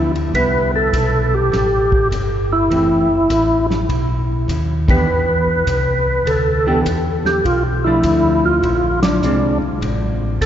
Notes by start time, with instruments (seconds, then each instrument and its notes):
Already playing: tonewheel organ D2 E4, hollow-body jazz guitar F3 B3 D4
0.15 ride
0.34 tonewheel organ C2 B4, hollow-body jazz guitar G3 B3 E4, kick, ride
0.76 tonewheel organ A4
0.93 tonewheel organ B1, kick, hi-hat pedal, ride
1.34 tonewheel organ G4
1.52 tonewheel organ A1, kick, snare, ride
1.92 kick
2.11 tonewheel organ G1, kick, hi-hat pedal, ride
2.53 tonewheel organ E4
2.70 tonewheel organ F#1, hollow-body jazz guitar E3 A3 C4, kick, ride
3.29 tonewheel organ A1, kick, hi-hat pedal, ride
3.70 snare
3.89 tonewheel organ B1, kick, ride
4.48 tonewheel organ D#2, kick, hi-hat pedal, ride
4.88 hollow-body jazz guitar E3 B3 D4 G4, tonewheel organ B4, kick, ride
5.07 tonewheel organ E2
5.67 tonewheel organ C2, kick, hi-hat pedal, ride
6.26 tonewheel organ D2 A4, kick, ride
6.67 hollow-body jazz guitar E3 B3 D4 G4
6.85 tonewheel organ E2, kick, hi-hat pedal, ride
7.25 tonewheel organ G4, snare
7.44 tonewheel organ B1 F4, kick, ride
7.84 hollow-body jazz guitar F3 A3 D4, tonewheel organ E4
8.03 tonewheel organ D2, kick, hi-hat pedal, ride
8.45 tonewheel organ F4
8.63 tonewheel organ A#1, kick, ride
9.03 tonewheel organ D4, snare, ride
9.22 tonewheel organ C2, hollow-body jazz guitar G#3 C4 D4, hi-hat pedal
9.62 tonewheel organ C2
9.82 tonewheel organ A1, kick, ride
10.41 tonewheel organ B1 A4, kick, hi-hat pedal, ride